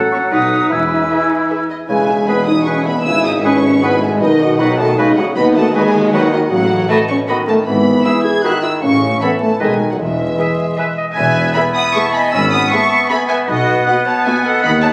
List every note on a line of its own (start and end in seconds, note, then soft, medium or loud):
0.00 0.72 F#3 medium
0.00 0.34 A4 medium
0.00 0.74 F#5 medium
0.12 0.20 C#4 medium
0.12 0.18 C#6 medium
0.31 0.64 B1 medium
0.31 0.65 B1 medium
0.31 0.70 D#4 medium
0.31 0.39 F#4 medium
0.31 0.46 F#4 medium
0.31 0.39 B4 soft
0.31 1.70 B4 medium
0.31 0.46 B4 medium
0.31 0.40 F#5 soft
0.31 0.70 D#6 medium
0.71 1.04 E1 medium
0.71 1.04 E2 medium
0.71 1.70 E3 medium
0.71 1.69 E4 medium
0.71 1.70 G#5 soft
0.71 1.68 E6 medium
1.09 1.47 G#4 medium
1.09 1.24 G#4 soft
1.09 1.18 G#4 soft
1.09 1.25 B4 medium
1.09 1.19 E5 soft
1.50 1.58 G#4 soft
1.50 1.65 G#4 soft
1.50 1.58 B4 medium
1.50 1.65 B4 soft
1.50 1.58 E5 soft
1.70 1.77 D#5 medium
1.88 3.01 E1 medium
1.88 3.02 E1 medium
1.88 3.01 E2 medium
1.88 2.28 C#3 medium
1.88 2.26 G#3 medium
1.88 2.07 E4 medium
1.88 2.07 B4 medium
1.88 2.25 G#5 medium
1.88 2.07 G#5 medium
2.08 2.27 G#4 medium
2.08 2.28 E5 medium
2.27 3.07 B2 medium
2.27 2.37 B3 medium
2.27 2.47 E4 medium
2.27 2.42 G#4 medium
2.27 2.47 B4 medium
2.27 2.42 B4 medium
2.27 2.47 G#5 medium
2.27 2.35 G#5 medium
2.27 2.47 B5 medium
2.46 2.66 D#4 medium
2.46 2.66 G#4 medium
2.46 2.66 E5 medium
2.46 2.66 D#6 medium
2.65 2.86 C#4 medium
2.65 2.84 E4 medium
2.65 2.80 G#4 medium
2.65 2.84 B4 medium
2.65 2.80 B4 medium
2.65 2.84 G#5 medium
2.65 2.74 G#5 medium
2.65 2.85 C#6 medium
2.84 2.96 B3 medium
2.84 3.05 G#4 medium
2.84 3.05 E5 medium
2.84 3.04 B5 medium
3.03 4.19 G#1 medium
3.03 4.24 G#1 medium
3.03 4.19 G#2 medium
3.03 3.43 C#3 medium
3.03 3.23 E4 medium
3.03 3.25 E4 loud
3.03 3.23 B4 medium
3.03 3.23 G#5 medium
3.03 3.23 E6 medium
3.24 3.34 D#4 loud
3.24 3.44 G#4 medium
3.24 3.44 E5 medium
3.24 3.32 D#6 medium
3.43 4.57 B2 medium
3.43 3.83 C#4 loud
3.43 3.63 E4 medium
3.43 3.58 G#4 medium
3.43 3.63 B4 medium
3.43 3.59 B4 medium
3.43 3.51 G#5 medium
3.43 3.63 G#5 medium
3.43 3.82 C#6 medium
3.63 3.83 G#4 medium
3.63 3.83 E5 medium
3.83 3.91 B3 loud
3.83 4.01 E4 medium
3.83 3.97 G#4 medium
3.83 4.01 B4 medium
3.83 3.97 B4 medium
3.83 4.01 G#5 medium
3.83 3.90 G#5 medium
3.83 4.02 B5 medium
4.01 4.21 G#3 loud
4.01 4.21 G#4 medium
4.01 4.21 E5 medium
4.01 4.10 G#5 medium
4.21 5.37 B1 medium
4.21 5.38 B1 medium
4.21 5.36 B2 medium
4.21 4.60 D#3 loud
4.21 4.39 D#4 medium
4.21 4.39 B4 medium
4.21 4.59 D#5 loud
4.21 4.39 D#5 medium
4.41 4.60 F#4 medium
4.41 4.60 D#5 medium
4.41 4.60 F#5 medium
4.58 4.97 D#3 medium
4.58 4.79 F#3 loud
4.58 4.79 D#4 medium
4.58 4.73 F#4 medium
4.58 4.79 B4 medium
4.58 4.74 B4 medium
4.58 4.79 D#5 medium
4.58 4.78 F#5 medium
4.58 4.66 B5 medium
4.78 4.90 A3 loud
4.78 4.98 F#4 medium
4.78 4.98 D#5 medium
4.78 4.98 F#5 medium
4.78 4.98 A5 medium
4.97 5.37 C#3 medium
4.97 5.17 G#3 loud
4.97 5.16 D#4 medium
4.97 5.12 F#4 medium
4.97 5.16 B4 medium
4.97 5.12 B4 medium
4.97 5.16 D#5 medium
4.97 5.05 G#5 medium
4.97 5.06 B5 medium
5.16 5.26 F#3 loud
5.16 5.37 F#4 medium
5.16 5.37 D#5 medium
5.16 5.24 F#5 medium
5.16 5.36 F#5 medium
5.35 6.52 D#2 medium
5.35 5.73 B2 medium
5.35 6.52 D#3 medium
5.35 5.56 B3 loud
5.35 5.55 D#4 medium
5.35 5.55 B4 medium
5.35 5.54 D#5 medium
5.35 5.44 B5 loud
5.55 5.64 A3 loud
5.55 5.75 F#4 medium
5.55 5.75 D#5 medium
5.55 5.75 F#5 medium
5.55 5.75 A5 loud
5.74 6.12 B2 medium
5.74 6.13 G#3 loud
5.74 5.95 D#4 medium
5.74 5.90 F#4 medium
5.74 5.89 B4 medium
5.74 5.95 B4 medium
5.74 5.94 D#5 medium
5.74 6.13 G#5 loud
5.74 5.83 B5 medium
5.94 6.14 F#4 medium
5.94 6.14 D#5 medium
5.94 6.13 F#5 medium
6.13 6.51 D#3 loud
6.13 6.22 F#3 loud
6.13 6.32 D#4 medium
6.13 6.29 F#4 medium
6.13 6.27 B4 medium
6.13 6.32 B4 medium
6.13 6.32 D#5 medium
6.13 6.32 F#5 loud
6.13 6.22 B5 medium
6.32 6.41 D#3 loud
6.32 6.52 F#4 medium
6.32 6.52 D#5 medium
6.32 6.40 D#5 medium
6.32 6.52 F#5 medium
6.51 6.84 A1 loud
6.51 6.85 A1 medium
6.51 6.84 A2 medium
6.51 6.89 C#3 medium
6.51 6.89 F#3 loud
6.51 6.89 F#5 loud
6.89 7.30 B2 medium
6.89 6.98 A3 loud
6.89 7.05 F#4 medium
6.89 6.98 B4 medium
6.89 7.04 D#5 medium
6.89 6.98 D#5 medium
6.89 6.98 F#5 medium
6.89 6.98 A5 loud
6.89 6.97 B5 medium
7.08 7.18 C#4 medium
7.08 7.16 C#6 medium
7.28 7.66 D#3 medium
7.28 7.37 B3 loud
7.28 7.43 F#4 medium
7.28 7.36 B4 medium
7.28 7.36 D#5 medium
7.28 7.43 D#5 medium
7.28 7.37 F#5 medium
7.28 7.36 B5 medium
7.47 7.56 A3 loud
7.47 7.56 A5 loud
7.66 7.99 G#1 medium
7.66 8.00 G#1 medium
7.66 7.99 G#2 medium
7.66 8.04 E3 medium
7.66 8.04 B3 loud
7.66 8.04 B5 loud
8.04 8.43 E3 medium
8.04 8.25 E4 loud
8.04 8.20 G#4 medium
8.04 8.14 B4 medium
8.04 8.13 E5 medium
8.04 8.19 E5 medium
8.04 8.14 E5 medium
8.04 8.12 B5 medium
8.04 8.24 E6 medium
8.23 8.43 G#4 loud
8.23 8.43 G#6 medium
8.43 8.85 D#3 medium
8.43 8.53 F#4 loud
8.43 8.58 G#4 medium
8.43 8.52 B4 medium
8.43 8.52 E5 medium
8.43 8.59 E5 medium
8.43 8.51 B5 medium
8.43 8.63 F#6 medium
8.63 8.72 E4 loud
8.63 8.70 E6 medium
8.82 9.15 A1 medium
8.82 9.14 A2 medium
8.82 9.20 C#3 medium
8.82 9.21 C#4 loud
8.82 9.20 C#6 medium
9.20 9.59 E3 medium
9.20 9.31 B3 medium
9.20 9.29 A4 medium
9.20 9.36 A4 medium
9.20 9.29 C#5 medium
9.20 9.29 E5 medium
9.20 9.36 E5 medium
9.20 9.27 A5 medium
9.20 9.29 B5 medium
9.41 9.49 A3 medium
9.41 9.60 A5 medium
9.59 9.93 B1 medium
9.59 9.92 B2 medium
9.59 9.98 D#3 medium
9.59 9.74 G#3 medium
9.59 9.69 A4 medium
9.59 9.74 B4 medium
9.59 9.68 B4 medium
9.59 9.68 D#5 medium
9.59 9.75 D#5 medium
9.59 9.89 G#5 medium
9.59 9.67 A5 medium
9.90 9.96 F#3 medium
9.90 9.94 F#5 medium
9.99 10.32 E1 medium
9.99 10.32 E2 medium
9.99 10.95 E3 medium
9.99 10.95 G#3 medium
9.99 10.96 E5 medium
10.38 10.75 G#4 medium
10.38 10.46 G#4 soft
10.38 10.46 B4 soft
10.38 10.46 E5 soft
10.38 10.53 E5 soft
10.38 10.46 G#5 medium
10.77 10.86 G#4 medium
10.77 10.86 B4 medium
10.77 10.87 B4 medium
10.77 10.85 E5 medium
10.77 10.92 E5 soft
10.77 10.85 G#5 soft
10.97 11.06 D#5 medium
11.15 11.49 E1 medium
11.15 11.49 E2 medium
11.15 13.44 B3 medium
11.15 11.52 B4 medium
11.15 11.53 E5 medium
11.15 11.52 G#5 loud
11.15 13.50 B5 medium
11.54 11.63 G#3 medium
11.54 11.69 B3 medium
11.54 12.29 E4 medium
11.54 11.64 G#4 medium
11.54 11.69 B4 medium
11.54 11.62 E5 medium
11.54 11.75 G#5 medium
11.54 11.62 B5 loud
11.74 11.81 F#5 medium
11.74 11.83 B5 medium
11.74 11.94 D#6 loud
11.93 12.02 G#3 medium
11.93 12.07 B3 medium
11.93 12.03 G#4 medium
11.93 12.08 B4 medium
11.93 12.13 E5 medium
11.93 12.13 A5 medium
11.93 12.13 C#6 medium
12.13 12.33 D#5 medium
12.13 12.33 G#5 medium
12.13 12.21 B5 loud
12.32 12.65 G#1 medium
12.32 12.65 G#2 medium
12.32 12.74 C#4 medium
12.32 12.40 G#5 medium
12.32 12.51 B5 loud
12.32 12.51 E6 medium
12.51 12.74 F#5 medium
12.51 12.60 B5 medium
12.51 12.71 D#6 loud
12.69 12.84 B3 medium
12.69 12.80 B3 medium
12.69 14.63 B3 medium
12.69 12.80 G#4 medium
12.69 12.84 B4 medium
12.69 13.11 E5 medium
12.69 13.09 A5 medium
12.69 13.09 C#6 medium
13.10 13.24 B3 medium
13.10 13.18 B3 medium
13.10 13.18 G#4 medium
13.10 13.24 B4 medium
13.10 13.17 E5 medium
13.10 13.29 G#5 medium
13.10 13.17 B5 loud
13.28 13.37 B4 medium
13.28 13.37 E5 medium
13.28 13.36 G#5 medium
13.48 13.81 B1 medium
13.48 13.81 B2 medium
13.48 14.93 B3 medium
13.48 13.87 F#4 medium
13.48 13.87 B4 medium
13.48 13.86 D#5 medium
13.48 14.93 F#5 medium
13.87 14.01 B3 medium
13.87 13.95 B3 medium
13.87 13.95 F#4 medium
13.87 14.01 F#4 medium
13.87 14.07 B4 medium
13.87 14.06 D#5 medium
13.87 13.95 F#5 medium
14.05 14.25 C#5 medium
14.05 14.14 F#5 medium
14.05 14.25 A5 medium
14.25 14.34 B3 medium
14.25 14.40 B3 medium
14.25 14.34 F#4 medium
14.25 14.40 F#4 medium
14.25 14.47 B4 medium
14.25 14.33 E5 medium
14.25 14.44 G#5 medium
14.44 14.63 A4 medium
14.44 14.63 D#5 medium
14.44 14.64 F#5 medium
14.63 14.93 D#2 medium
14.63 14.93 D#3 medium
14.63 14.93 D#4 medium
14.63 14.70 D#5 medium
14.63 14.82 F#5 loud
14.63 14.71 B5 loud
14.82 14.89 C#5 medium
14.82 14.91 F#5 medium
14.82 14.90 A5 loud